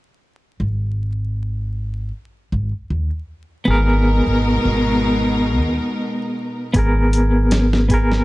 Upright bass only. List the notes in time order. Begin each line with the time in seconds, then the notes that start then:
0.60 G#1
2.52 G#1
2.90 D#2
3.67 G#1
4.27 G#1
4.65 G#1
5.59 D#2
6.75 G#1